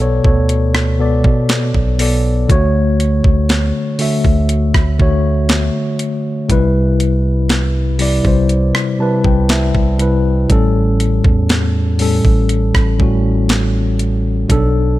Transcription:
Already playing: B1 D5
0.00 B2 B3 A4 C#5
0.23 D2 B2 B3 A4 C#5, kick
0.49 closed hi-hat
0.75 cross-stick, snare
0.98 C#2 B2 B3 A4 D5
1.24 B2, kick
1.49 snare, closed hi-hat
1.74 B1, kick
1.98 B2 B3 A4 D5, open hi-hat
2.48 D2 D3 A3 F#4 C#5, kick, closed hi-hat
3.00 closed hi-hat
3.24 D2, kick
3.49 snare, closed hi-hat
3.98 D3 A3 F#4 E5, open hi-hat
4.25 D2, kick
4.49 closed hi-hat
4.74 D2, kick, cross-stick
4.98 D3 A3 F#4 C#5, kick
5.49 snare, closed hi-hat
5.99 closed hi-hat
6.49 C2 C3 G3 E4 B4, kick, closed hi-hat
7.00 closed hi-hat
7.49 snare, closed hi-hat
7.98 C3 G3 E4 D5, open hi-hat
8.24 C2 C3 G3 E4 C5, kick
8.49 closed hi-hat
8.75 cross-stick
8.98 C3 G3 E4 B4 A5
9.24 C2 G5, kick
9.49 E5, snare, closed hi-hat
9.75 C2, kick
9.99 C3 G3 E4 B4, closed hi-hat
10.48 A1 A2 G3 C#4 A4, kick, closed hi-hat
11.00 closed hi-hat
11.24 E2, kick
11.49 snare, closed hi-hat
11.98 A2 G3 C#4 A4, open hi-hat
12.25 A1, kick
12.49 closed hi-hat
12.75 A1, kick, cross-stick
12.98 A2 G3 C#4 F#4, kick
13.49 snare, closed hi-hat
13.99 closed hi-hat
14.48 B1 B2 F#3 D4 A4, kick, closed hi-hat

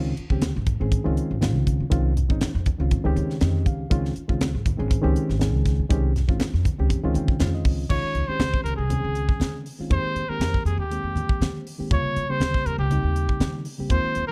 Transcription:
Already playing: C#2 D#3 G#3 C4 C#4 F4
0.17 C#4 F4, muted upright bass stroke, closed hi-hat, muted conga
0.30 C#2 D#3 G#3 C4 C#4 G4, kick
0.42 snare, closed hi-hat, high conga
0.56 G#1 D#4
0.66 kick, closed hi-hat, high conga
0.80 G#1 D#3 G#3 C4 C#4 G#4
0.92 kick, closed hi-hat
1.04 C#2 D#3 G#3 C4 C#4 F4
1.17 closed hi-hat
1.31 G#1
1.41 D#3 G#3 C4 C#4 F4, snare, closed hi-hat, high conga
1.55 C#2
1.67 kick, closed hi-hat, muted conga
1.80 C#3
1.90 C2 D#3 G#3 C4 C#4 F4, kick, closed hi-hat
2.16 C#4 F4, closed hi-hat, muted conga, low conga
2.29 G#1 D#3 G#3 C4 C#4 D#4, kick
2.41 muted upright bass stroke, snare, closed hi-hat, high conga
2.54 F2 C#4 D#4
2.66 kick, closed hi-hat, high conga
2.79 C#2 D#3 G#3 C4 C#4 F4
2.91 kick, closed hi-hat, muted conga, low conga
3.04 C#2 D#3 G#3 C4 C#4 G4
3.16 C#3 C#5, closed hi-hat, high conga
3.30 snare
3.41 F2 D#3 G#3 C4 C#4 G4 D#5, snare, closed hi-hat, high conga
3.66 C#2 F5, kick, closed hi-hat, muted conga
3.90 C#2 D#3 G#3 C4 C#4 F4, kick, closed hi-hat
4.05 snare
4.15 C#4 F4, muted upright bass stroke, closed hi-hat, muted conga
4.28 C#2 D#3 G#3 C4 C#4 F4, kick
4.41 snare, closed hi-hat, high conga
4.53 G#1 C#4 G#4
4.66 kick, closed hi-hat, high conga
4.77 G#1 D#3 G#3 C4 C#4 G#4
4.91 kick, closed hi-hat
5.02 C#2 D#3 G#3 C4 C#4 G4
5.16 closed hi-hat
5.29 G#1, snare
5.39 D#3 G#3 C4 C#4 G#4, snare, closed hi-hat, high conga
5.54 C#2
5.66 kick, snare, closed hi-hat
5.79 C#3
5.89 C2 D#3 G#3 C4 C#4 G4, kick, closed hi-hat
6.15 C#4 F4, snare, closed hi-hat, muted conga, low conga
6.28 G#1 D#3 G#3 C4 C#4 F4, kick
6.40 muted upright bass stroke, snare, closed hi-hat, high conga
6.54 F2 F4, snare
6.65 kick, closed hi-hat, high conga
6.78 C#2 D#3 G#3 C4 C#4 G4
6.90 kick, closed hi-hat, muted conga, low conga
7.04 C#2 D#3 G#3 C4 C#4 F4
7.15 C#3 G5, closed hi-hat, high conga
7.28 kick
7.39 F2 D#3 G#3 C4 C#4 F4 F5, snare, closed hi-hat, high conga
7.54 D#5
7.65 C#2, kick, open hi-hat
7.89 C#2 D#3 G#3 C#4 D#4 F4 C#5, kick, crash, muted conga
8.03 muted upright bass stroke
8.15 C#2, closed hi-hat
8.28 D#3 G#3 C4 C#4 G4 C5, muted upright bass stroke
8.40 C#2, snare, closed hi-hat, high conga
8.54 kick
8.64 C#2 A#4, closed hi-hat, muted conga
8.77 C2 G#4
8.90 D#3 G#3 C4 C#4 G#4, closed hi-hat, muted conga, high conga
9.04 C#2
9.15 closed hi-hat, muted conga
9.29 kick
9.40 C#3, snare, closed hi-hat, high conga
9.66 open hi-hat
9.79 D#3 G#3 C4 C#4 F4, muted upright bass stroke
9.90 F2 D#3 G#3 A#3 C4 G4 C5, kick, closed hi-hat
10.04 muted upright bass stroke
10.15 F2, closed hi-hat
10.29 D#3 G#3 A#3 C4 G4 A#4, muted upright bass stroke
10.39 F2, snare, closed hi-hat, high conga
10.54 kick
10.65 F2 G#4, closed hi-hat, muted conga
10.78 D#2 G4
10.90 D#3 G#3 A#3 C4 G4, closed hi-hat, muted conga
11.03 F2
11.16 closed hi-hat, muted conga, high conga, low conga
11.29 kick
11.41 F3, snare, closed hi-hat, high conga
11.67 open hi-hat
11.78 D#3 G#3 A#3 C4 G4, muted upright bass stroke
11.90 D#2 C3 C#3 G3 A#3 F4 C#5, kick, closed hi-hat
12.04 muted upright bass stroke
12.16 D#2, closed hi-hat
12.29 C#3 G3 A#3 C4 G4 C5, muted upright bass stroke
12.40 D#2, snare, closed hi-hat, high conga
12.54 kick
12.66 D#2 A#4, closed hi-hat
12.78 C#2 G4
12.90 C#3 G3 A#3 C4 D#4, closed hi-hat, muted conga, high conga
13.04 D#2
13.16 closed hi-hat, muted conga
13.29 kick
13.40 D#3, snare, closed hi-hat, high conga
13.65 open hi-hat
13.78 C#3 G3 A#3 C4 G4, muted upright bass stroke
13.90 D#2 D#3 G#3 A#3 C4 F4 C5, kick, closed hi-hat
14.15 D#2, closed hi-hat
14.28 D#3 A#4

